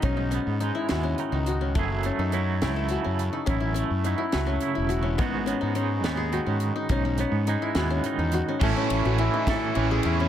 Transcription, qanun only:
\new Staff \with { instrumentName = "Qanun" } { \time 6/8 \key gis \phrygian \tempo 4. = 70 cis'16 dis'16 cis'8 dis'16 e'16 fis'16 cis'8 dis'16 fis'16 cis'16 | a8 cis'16 dis'16 cis'8 e'16 a'16 fis'16 cis'8 dis'16 | cis'16 e'16 cis'8 dis'16 e'16 fis'16 cis'8 e'16 fis'16 cis'16 | b8 cis'16 dis'16 cis'8 dis'16 gis'16 fis'16 cis'8 dis'16 |
cis'16 dis'16 cis'8 dis'16 e'16 fis'16 cis'8 dis'16 fis'16 cis'16 | a16 cis'8 fis'16 e'16 dis'16 e'8 cis'16 gis'16 e'16 cis'16 | }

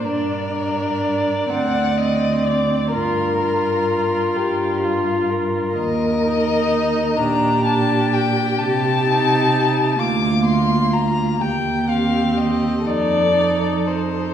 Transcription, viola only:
\new Staff \with { instrumentName = "Viola" } { \time 6/8 \key bes \major \tempo 4. = 42 d'8 d'4 c'8 c'4 | f'8 f'4. f'4 | r8 ees'4 d'8 d'4 | r8 ees'4 bes8 bes4 |
r8 c'4 ees'8 ees'4 | }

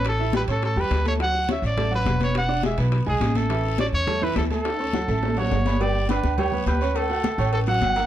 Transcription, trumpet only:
\new Staff \with { instrumentName = "Trumpet" } { \time 4/4 \key d \major \tempo 4 = 208 a'4 b'8 a'8 a'8 b'4 cis''8 | fis''4 e''8 d''4 b'4 cis''8 | fis''4 e''8 r4 gis'4 a'8~ | a'4 d''8 cis''4 b'8 a'8 a'8~ |
a'2~ a'8 cis''4. | d''4 b'4 cis''4 b'4 | a'2 a'8 fis''4. | }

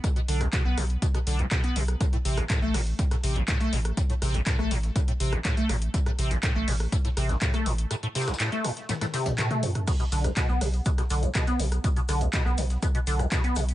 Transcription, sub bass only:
\new Staff \with { instrumentName = "Sub bass" } { \clef bass \time 4/4 \key a \dorian \tempo 4 = 122 r8 b,,8 r16 b,,16 b,,8 r8 b,,8 r8 b,,8 | r8 a,,8 r16 a,,16 a,,8 r8 a,,8 r8 a,,8 | r8 a,,8 r16 a,,16 a,,8 r8 a,,8 r8 a,,8 | r8 a,,8 r16 a,,16 a,,8 r8 a,,8 r8 a,,8 |
r1 | r8 b,,8 r16 b,,16 b,,8 r8 b,,8 r8 b,,8 | r8 b,,8 r16 b,,16 b,,8 r8 b,,8 r8 b,,8 | }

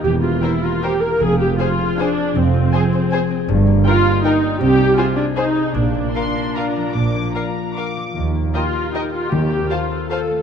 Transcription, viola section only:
\new Staff \with { instrumentName = "Viola section" } { \time 3/4 \key ees \major \tempo 4 = 154 g'8 f'8 e'8 f'8 g'8 bes'8 | aes'8 g'8 f'4 d'4 | c'2. | r4 f'4 ees'4 |
g'4 f'8 d'8 ees'4 | d'2.~ | d'2 r4 | r4 f'4 ees'8 f'8 |
g'4 f'4 a'4 | }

